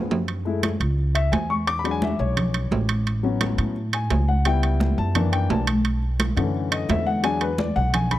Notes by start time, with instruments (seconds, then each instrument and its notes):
Already playing: upright bass F#2
0.11 low conga, low timbale
0.28 high conga, high timbale
0.45 grand piano G#3 A3 E4, high conga
0.63 high conga, high timbale, low timbale
0.80 upright bass C#2, high conga, high timbale
0.98 high conga
1.15 grand piano E5, high conga, high timbale
1.32 upright bass E2, grand piano G#5, high conga, high timbale, low timbale
1.50 grand piano C#6, high conga
1.67 grand piano D6, high conga, high timbale
1.79 grand piano B5
1.84 grand piano F#3 G#3 D4, high conga, high timbale
1.91 grand piano G#5
2.02 grand piano E5, high conga, low timbale
2.19 upright bass B1, grand piano C#5, high conga
2.37 high conga, low conga, high timbale
2.54 high conga, high timbale
2.71 upright bass A1, high conga, low timbale
2.89 high timbale
3.07 high conga, high timbale
3.23 grand piano F#3 B3 C#4, high conga
3.41 high conga, high timbale, low timbale
3.58 upright bass A2, high conga, high timbale
3.76 high conga
3.93 grand piano G#5, high conga, high timbale
4.10 upright bass C#2, high conga, high timbale, low timbale
4.28 grand piano F#5, high conga
4.45 grand piano G3 B3 E4 G5, high timbale
4.63 high conga, high timbale
4.80 high conga, low timbale
4.98 upright bass F#2, grand piano A5, high conga
5.15 grand piano E3 A#3 D4, high conga, low conga, high timbale
5.32 grand piano G5, high conga, high timbale
5.50 upright bass B1, grand piano A5, high conga, low timbale
5.67 high conga, high timbale
5.85 high timbale
6.02 high conga
6.20 high conga, high timbale, low timbale
6.37 upright bass F#2, grand piano D3 E3 A3 C#4, high conga, high timbale
6.54 high conga
6.71 grand piano D#5, high conga, high timbale
6.89 upright bass E2, grand piano E5, high conga, high timbale, low timbale
7.06 grand piano F#5, high conga
7.23 grand piano F#3 G#3 D4 G#5, high conga, high timbale
7.41 grand piano B4, high conga, high timbale
7.58 grand piano D5, high conga, low timbale
7.76 upright bass B1, grand piano F#5, high conga
7.94 grand piano G#5, high conga, low conga, high timbale
8.11 grand piano B5, high conga, low conga, high timbale